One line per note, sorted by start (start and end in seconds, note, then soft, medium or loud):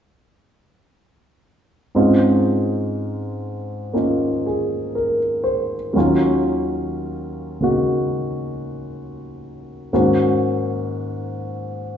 1.95 5.95 G#2 soft
1.95 5.96 G#3 soft
1.95 5.96 C4 soft
1.95 3.93 C#4 soft
1.95 3.94 D#4 soft
1.95 3.94 F4 soft
3.93 5.94 A#3 soft
3.93 5.95 C#4 soft
3.93 5.95 D#4 soft
3.93 5.95 F4 soft
4.46 5.17 G#4 soft
4.95 5.75 A#4 soft
5.44 6.15 C5 soft
5.93 9.90 D#2 soft
5.93 9.90 D#3 soft
5.93 9.91 F#3 soft
5.97 9.92 C#4 soft
5.97 9.92 F4 soft
7.61 9.91 C#3 soft
7.61 9.92 A#3 soft
7.61 9.92 D#4 soft
7.61 9.92 F#4 soft
9.93 11.97 G#2 soft
9.93 11.97 D#3 soft
9.93 11.97 A#3 soft
9.93 11.97 C#4 soft
9.93 11.97 F#4 soft